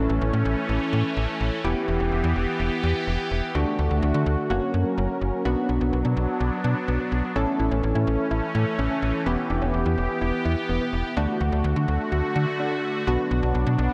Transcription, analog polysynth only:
0, 0, Header, 1, 2, 480
1, 0, Start_track
1, 0, Key_signature, 2, "minor"
1, 0, Tempo, 476190
1, 1656, Time_signature, 4, 2, 24, 8
1, 14045, End_track
2, 0, Start_track
2, 0, Title_t, "Analog polysynth"
2, 0, Program_c, 0, 90
2, 0, Note_on_c, 0, 61, 77
2, 0, Note_on_c, 0, 64, 71
2, 0, Note_on_c, 0, 69, 90
2, 1617, Note_off_c, 0, 61, 0
2, 1617, Note_off_c, 0, 64, 0
2, 1617, Note_off_c, 0, 69, 0
2, 1658, Note_on_c, 0, 59, 78
2, 1658, Note_on_c, 0, 64, 72
2, 1658, Note_on_c, 0, 67, 88
2, 3538, Note_off_c, 0, 59, 0
2, 3538, Note_off_c, 0, 64, 0
2, 3538, Note_off_c, 0, 67, 0
2, 3578, Note_on_c, 0, 57, 80
2, 3578, Note_on_c, 0, 62, 71
2, 3578, Note_on_c, 0, 66, 86
2, 4517, Note_off_c, 0, 57, 0
2, 4518, Note_off_c, 0, 62, 0
2, 4518, Note_off_c, 0, 66, 0
2, 4536, Note_on_c, 0, 61, 74
2, 4537, Note_on_c, 0, 58, 80
2, 4537, Note_on_c, 0, 66, 86
2, 5477, Note_off_c, 0, 58, 0
2, 5477, Note_off_c, 0, 61, 0
2, 5477, Note_off_c, 0, 66, 0
2, 5496, Note_on_c, 0, 59, 78
2, 5496, Note_on_c, 0, 62, 72
2, 5496, Note_on_c, 0, 66, 86
2, 7377, Note_off_c, 0, 59, 0
2, 7377, Note_off_c, 0, 62, 0
2, 7378, Note_off_c, 0, 66, 0
2, 7416, Note_on_c, 0, 69, 86
2, 7417, Note_on_c, 0, 61, 76
2, 7417, Note_on_c, 0, 64, 69
2, 9298, Note_off_c, 0, 61, 0
2, 9298, Note_off_c, 0, 64, 0
2, 9298, Note_off_c, 0, 69, 0
2, 9337, Note_on_c, 0, 59, 75
2, 9337, Note_on_c, 0, 64, 70
2, 9337, Note_on_c, 0, 67, 87
2, 11218, Note_off_c, 0, 59, 0
2, 11218, Note_off_c, 0, 64, 0
2, 11218, Note_off_c, 0, 67, 0
2, 11257, Note_on_c, 0, 57, 79
2, 11257, Note_on_c, 0, 62, 70
2, 11257, Note_on_c, 0, 66, 84
2, 13138, Note_off_c, 0, 57, 0
2, 13138, Note_off_c, 0, 62, 0
2, 13138, Note_off_c, 0, 66, 0
2, 13177, Note_on_c, 0, 59, 79
2, 13177, Note_on_c, 0, 62, 74
2, 13177, Note_on_c, 0, 66, 87
2, 14045, Note_off_c, 0, 59, 0
2, 14045, Note_off_c, 0, 62, 0
2, 14045, Note_off_c, 0, 66, 0
2, 14045, End_track
0, 0, End_of_file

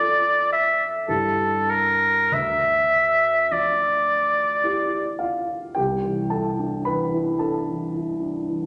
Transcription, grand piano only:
0, 0, Header, 1, 2, 480
1, 0, Start_track
1, 0, Tempo, 1096892
1, 472, Tempo, 1217039
1, 962, Time_signature, 3, 2, 24, 8
1, 1432, Tempo, 1140684
1, 1912, Tempo, 1121495
1, 2392, Tempo, 1079137
1, 3676, End_track
2, 0, Start_track
2, 0, Title_t, "Grand piano"
2, 0, Program_c, 0, 0
2, 0, Control_c, 0, 64, 127
2, 0, Note_on_c, 0, 41, 40
2, 0, Note_on_c, 0, 65, 27
2, 0, Note_on_c, 0, 69, 34
2, 454, Note_off_c, 0, 41, 0
2, 457, Note_off_c, 0, 65, 0
2, 458, Note_off_c, 0, 69, 0
2, 474, Note_on_c, 0, 43, 35
2, 474, Note_on_c, 0, 50, 24
2, 474, Note_on_c, 0, 64, 26
2, 474, Note_on_c, 0, 67, 24
2, 476, Note_on_c, 0, 62, 22
2, 480, Control_c, 0, 64, 0
2, 543, Control_c, 0, 64, 127
2, 947, Note_off_c, 0, 50, 0
2, 948, Note_off_c, 0, 43, 0
2, 948, Note_off_c, 0, 62, 0
2, 949, Note_off_c, 0, 64, 0
2, 949, Note_off_c, 0, 67, 0
2, 959, Note_on_c, 0, 38, 34
2, 970, Control_c, 0, 64, 0
2, 1057, Control_c, 0, 64, 127
2, 1432, Note_on_c, 0, 53, 26
2, 1904, Note_on_c, 0, 64, 23
2, 1909, Note_on_c, 0, 67, 28
2, 2141, Note_on_c, 0, 77, 44
2, 2146, Note_on_c, 0, 65, 36
2, 2204, Note_off_c, 0, 53, 0
2, 2371, Note_off_c, 0, 64, 0
2, 2371, Note_off_c, 0, 65, 0
2, 2373, Note_off_c, 0, 67, 0
2, 2374, Note_off_c, 0, 38, 0
2, 2380, Note_on_c, 0, 79, 62
2, 2385, Note_off_c, 0, 77, 0
2, 2386, Note_on_c, 0, 67, 46
2, 2391, Note_on_c, 0, 36, 40
2, 2399, Control_c, 0, 64, 0
2, 2470, Control_c, 0, 64, 127
2, 2514, Note_on_c, 0, 52, 27
2, 2613, Note_off_c, 0, 67, 0
2, 2626, Note_on_c, 0, 81, 52
2, 2627, Note_off_c, 0, 79, 0
2, 2632, Note_on_c, 0, 69, 38
2, 2636, Note_on_c, 0, 64, 28
2, 2707, Note_off_c, 0, 52, 0
2, 2756, Note_on_c, 0, 62, 32
2, 2830, Note_off_c, 0, 64, 0
2, 2859, Note_off_c, 0, 69, 0
2, 2871, Note_on_c, 0, 83, 60
2, 2873, Note_off_c, 0, 81, 0
2, 2875, Note_on_c, 0, 71, 46
2, 2881, Note_on_c, 0, 52, 33
2, 2950, Note_off_c, 0, 62, 0
2, 2998, Note_on_c, 0, 64, 31
2, 3073, Note_off_c, 0, 52, 0
2, 3100, Note_off_c, 0, 71, 0
2, 3111, Note_on_c, 0, 81, 48
2, 3115, Note_off_c, 0, 83, 0
2, 3115, Note_on_c, 0, 69, 39
2, 3117, Note_on_c, 0, 62, 28
2, 3190, Note_off_c, 0, 64, 0
2, 3242, Note_on_c, 0, 52, 30
2, 3308, Note_off_c, 0, 62, 0
2, 3357, Note_on_c, 0, 64, 30
2, 3429, Note_off_c, 0, 52, 0
2, 3478, Note_on_c, 0, 62, 29
2, 3545, Note_off_c, 0, 64, 0
2, 3596, Note_on_c, 0, 52, 31
2, 3666, Note_off_c, 0, 62, 0
2, 3676, Note_off_c, 0, 36, 0
2, 3676, Note_off_c, 0, 52, 0
2, 3676, Note_off_c, 0, 69, 0
2, 3676, Note_off_c, 0, 81, 0
2, 3676, End_track
0, 0, End_of_file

